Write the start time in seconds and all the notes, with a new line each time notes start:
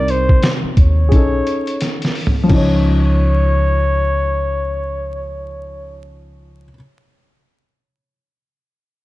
Already playing: C2 C3 G3 D#4 A#4 D5
0.08 C5, closed hi-hat
0.29 kick
0.43 snare, closed hi-hat
0.64 muted upright bass stroke
0.77 D#2 C#5, kick, closed hi-hat
1.09 B1 C#4 G#4, kick, closed hi-hat
1.13 D#4 A4
1.47 closed hi-hat
1.67 closed hi-hat
1.81 snare, closed hi-hat
2.02 snare, closed hi-hat
2.15 open hi-hat
2.27 floor tom
2.43 F3
2.48 C#2 C#4, kick, crash
2.52 D#4 C#5
2.57 C#5